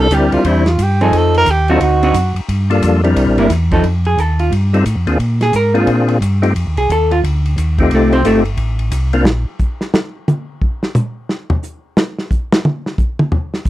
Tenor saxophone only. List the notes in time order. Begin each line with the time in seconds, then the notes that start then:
0.00 A4
0.14 G4
0.33 F4
0.48 E4
0.68 F4
0.82 G4
1.01 G#4
1.17 A4
1.37 A#4
1.50 G4
1.69 F4
1.83 F#4